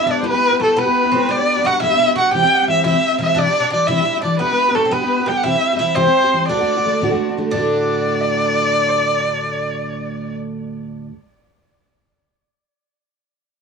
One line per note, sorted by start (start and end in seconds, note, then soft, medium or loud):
0.00 0.06 B3 soft
0.00 0.11 E5 medium
0.00 0.12 E5 loud
0.06 0.21 G3 medium
0.06 0.23 B3 medium
0.06 0.23 D4 medium
0.06 0.24 G4 medium
0.06 0.18 D5 medium
0.11 0.26 D5 medium
0.19 0.33 G3 medium
0.19 0.28 C5 medium
0.24 0.57 B3 medium
0.24 0.33 B3 medium
0.24 0.32 E4 medium
0.24 0.31 G4 medium
0.24 0.62 B4 medium
0.28 0.60 B4 loud
0.32 0.52 B3 soft
0.32 0.51 E4 medium
0.32 0.49 G4 medium
0.50 0.59 B3 soft
0.50 0.60 E4 soft
0.50 0.60 G4 medium
0.60 0.75 G3 medium
0.60 0.75 A3 medium
0.60 0.76 B3 medium
0.60 0.76 E4 medium
0.60 0.76 G4 medium
0.60 0.74 A4 medium
0.60 0.80 A4 medium
0.73 0.86 G3 medium
0.73 1.10 B3 medium
0.73 0.81 C5 medium
0.77 0.86 B3 medium
0.77 0.85 E4 medium
0.77 0.84 G4 loud
0.77 1.32 B4 loud
0.77 1.31 B4 medium
0.85 1.05 B3 soft
0.85 1.04 E4 medium
0.85 1.02 G4 medium
1.03 1.13 B3 soft
1.03 1.13 E4 medium
1.03 1.12 G4 soft
1.12 1.28 G3 medium
1.12 1.29 B3 medium
1.12 1.27 C4 medium
1.12 1.30 E4 medium
1.12 1.29 G4 medium
1.29 1.39 G3 medium
1.29 1.39 B3 medium
1.29 1.64 D4 medium
1.29 1.39 D4 medium
1.29 1.37 G4 medium
1.29 1.67 D5 loud
1.29 1.68 D5 loud
1.38 1.57 B3 soft
1.38 1.57 D4 medium
1.38 1.55 G4 medium
1.56 1.65 B3 soft
1.56 1.65 D4 medium
1.56 1.64 G4 medium
1.64 1.81 G3 medium
1.64 1.82 B3 medium
1.64 1.82 D4 medium
1.64 1.80 F#4 medium
1.64 1.82 G4 medium
1.64 1.84 F#5 medium
1.64 1.81 F#5 loud
1.80 1.91 G3 medium
1.80 1.92 B3 medium
1.80 1.92 D4 medium
1.80 1.98 E4 loud
1.80 2.15 E5 loud
1.80 2.19 E5 medium
1.85 1.90 G4 medium
1.91 2.09 B3 medium
1.91 2.08 D4 medium
1.91 2.07 G4 medium
1.99 2.15 E4 medium
2.08 2.16 B3 soft
2.08 2.17 D4 medium
2.08 2.16 G4 soft
2.15 2.33 G3 medium
2.15 2.33 B3 medium
2.15 2.34 D4 medium
2.15 2.31 F#4 medium
2.15 2.34 G4 medium
2.15 2.35 F#5 loud
2.15 2.33 F#5 medium
2.31 2.43 C3 medium
2.31 2.43 E3 medium
2.31 2.43 G3 medium
2.31 2.42 C4 medium
2.31 2.80 G4 medium
2.31 2.66 G5 loud
2.31 2.55 G5 loud
2.36 2.41 G4 medium
2.42 2.61 G3 soft
2.42 2.59 C4 medium
2.42 2.57 G4 medium
2.53 2.67 F#5 medium
2.59 2.67 G3 soft
2.59 2.68 C4 soft
2.59 2.68 G4 medium
2.68 2.84 E3 medium
2.68 2.84 G3 medium
2.68 2.85 C4 medium
2.68 2.85 G4 medium
2.68 2.83 E5 medium
2.68 2.85 E5 loud
2.84 2.94 C3 medium
2.84 2.95 E3 medium
2.84 2.95 G3 medium
2.84 2.93 C4 loud
2.84 3.17 E4 medium
2.84 2.92 G4 medium
2.84 3.18 E5 loud
2.84 3.19 E5 medium
2.93 3.13 G3 soft
2.93 3.11 C4 medium
2.93 3.10 G4 medium
3.11 3.19 G3 soft
3.11 3.20 C4 soft
3.11 3.20 G4 soft
3.18 3.35 E3 medium
3.18 3.35 G3 medium
3.18 3.36 C4 medium
3.18 3.34 E4 medium
3.18 3.36 G4 medium
3.18 3.39 E5 medium
3.18 3.40 E5 loud
3.35 3.46 C3 medium
3.35 3.46 E3 medium
3.35 3.46 G3 medium
3.35 3.46 D4 medium
3.35 3.44 G4 medium
3.35 3.73 D5 medium
3.35 3.73 D5 loud
3.45 3.65 G3 soft
3.45 3.64 D4 soft
3.45 3.59 D4 medium
3.45 3.62 G4 medium
3.60 3.69 D4 medium
3.60 3.72 G4 medium
3.65 3.72 G3 soft
3.65 3.73 D4 soft
3.70 3.88 E3 medium
3.70 3.89 G3 medium
3.70 3.87 D4 medium
3.70 3.89 D4 medium
3.70 3.89 G4 medium
3.70 3.88 D5 medium
3.70 3.89 D5 loud
3.87 3.98 C3 medium
3.87 3.99 E3 medium
3.87 3.99 G3 loud
3.87 3.99 D4 medium
3.87 4.04 E4 loud
3.87 3.98 G4 medium
3.87 4.22 E5 loud
3.87 4.23 E5 medium
3.99 4.18 G3 soft
3.99 4.16 D4 medium
3.99 4.15 G4 medium
4.05 4.21 E4 medium
4.16 4.24 G3 soft
4.16 4.25 D4 soft
4.16 4.24 G4 soft
4.22 4.40 E3 medium
4.22 4.39 G3 medium
4.22 4.40 D4 medium
4.22 4.39 D5 medium
4.26 4.40 D4 medium
4.26 4.40 G4 medium
4.26 4.42 D5 medium
4.39 4.50 G3 medium
4.39 4.74 B3 medium
4.39 4.50 B3 medium
4.39 4.49 D4 medium
4.39 4.49 G4 medium
4.39 4.77 B4 loud
4.39 4.59 B4 medium
4.50 4.69 B3 soft
4.50 4.68 D4 medium
4.50 4.67 G4 medium
4.60 4.80 B4 medium
4.68 4.75 B3 medium
4.68 4.76 D4 medium
4.68 4.76 G4 medium
4.75 4.90 G3 medium
4.75 4.85 A3 medium
4.75 4.91 B3 medium
4.75 4.91 D4 medium
4.75 4.91 G4 medium
4.75 4.94 A4 loud
4.79 4.96 A4 medium
4.85 4.91 C4 medium
4.91 5.01 G3 loud
4.91 5.25 B3 medium
4.91 5.02 B3 medium
4.91 5.02 D4 medium
4.91 5.00 G4 medium
4.91 5.29 B4 loud
4.91 5.32 B4 medium
5.01 5.21 B3 medium
5.01 5.20 D4 medium
5.01 5.18 G4 medium
5.19 5.29 B3 soft
5.19 5.29 D4 soft
5.19 5.28 G4 soft
5.26 5.44 G3 medium
5.26 5.46 B3 medium
5.26 5.46 D4 medium
5.26 5.42 G4 medium
5.26 5.39 G5 medium
5.30 5.45 G4 medium
5.30 5.48 G5 loud
5.37 5.45 F#5 medium
5.43 5.54 C3 medium
5.43 5.54 E3 medium
5.43 5.55 G3 medium
5.43 5.55 C4 medium
5.43 5.77 E4 medium
5.43 5.54 G4 medium
5.43 5.78 E5 loud
5.43 5.75 E5 medium
5.55 5.74 G3 soft
5.55 5.73 C4 soft
5.55 5.72 G4 medium
5.73 5.79 G3 medium
5.73 5.80 C4 soft
5.73 5.81 G4 medium
5.79 5.96 E3 medium
5.79 5.96 G3 medium
5.79 5.97 C4 medium
5.79 5.95 E4 medium
5.79 5.96 G4 medium
5.79 5.97 E5 medium
5.95 6.06 C3 medium
5.95 6.06 E3 medium
5.95 6.06 G3 loud
5.95 6.50 C4 medium
5.95 6.06 C4 medium
5.95 6.05 G4 loud
5.95 6.47 C5 loud
5.95 6.51 C5 medium
6.06 6.25 G3 medium
6.06 6.24 C4 medium
6.06 6.23 G4 medium
6.24 6.33 G3 soft
6.24 6.33 C4 soft
6.24 6.32 G4 medium
6.33 6.49 E3 medium
6.33 6.49 G3 medium
6.33 6.50 C4 medium
6.33 6.50 G4 medium
6.47 6.58 D2 medium
6.47 6.59 A2 medium
6.47 6.59 D3 medium
6.47 6.59 A3 medium
6.47 7.33 D4 medium
6.47 6.59 D4 medium
6.47 6.59 F#4 medium
6.47 7.32 D5 loud
6.47 7.37 D5 medium
6.60 6.78 D3 medium
6.60 6.77 A3 medium
6.60 6.76 D4 medium
6.60 6.75 F#4 medium
6.77 6.83 D3 soft
6.77 6.84 A3 medium
6.77 6.85 D4 medium
6.77 6.84 F#4 soft
6.84 7.01 D3 medium
6.84 7.01 A3 medium
6.84 7.02 D4 medium
6.84 7.02 F#4 medium
7.01 7.11 D2 medium
7.01 7.11 A2 loud
7.01 7.11 D3 medium
7.01 7.11 A3 medium
7.01 7.10 D4 loud
7.01 7.09 F#4 loud
7.10 7.30 D3 medium
7.10 7.29 A3 medium
7.10 7.29 D4 medium
7.10 7.28 F#4 medium
7.29 7.36 D3 soft
7.29 7.37 A3 soft
7.29 7.37 D4 medium
7.29 7.37 F#4 soft
7.37 7.52 D3 medium
7.37 7.54 A3 medium
7.37 7.54 D4 medium
7.37 7.55 F#4 medium
7.50 11.10 D2 medium
7.50 11.11 A2 medium
7.50 11.12 D3 medium
7.50 11.06 D4 loud
7.50 10.37 D5 loud
7.50 8.22 D5 loud
7.55 11.12 A3 medium
7.55 11.13 D4 medium
7.55 11.14 F#4 loud
8.21 8.90 D5 loud
8.21 8.25 E5 medium
8.88 8.93 C5 medium
8.88 10.40 D5 loud